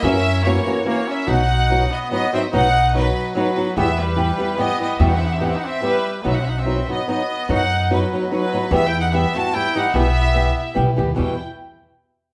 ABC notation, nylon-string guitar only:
X:1
M:3/4
L:1/8
Q:"Swing" 1/4=146
K:Em
V:1 name="Nylon-string guitar"
[F,,^C,E,^A,^CF] z [E,A,CF] [E,A,CF] [E,A,CF] z | [B,,F,B,^DF] z [F,B,DF] z [F,B,DF] [F,B,DF] | [B,,F,B,^DF] z [F,B,DF] z [F,B,DF] [F,B,DF] | [E,,B,,E,G,B,G] z [E,G,B,G] [E,G,B,G] [E,G,B,G] [E,G,B,G] |
[E,,B,,E,G,B,G] z [E,G,B,G] z [E,G,B,G] z | [B,,F,B,^DF] z [F,B,DF] [F,B,DF] [F,B,DF] z | [B,,F,B,^DF] z [F,B,DF] [F,B,DF] [F,B,DF] [F,B,DF] | [E,,B,,E,G,B,G] z [E,G,B,G] [E,G,B,G] [E,G,B,G] [E,G,B,G] |
[E,,B,,E,G,B,G] z [E,G,B,G] z [E,G,B,G] [E,G,B,G] | [E,,B,,E,G,B,G] z4 z |]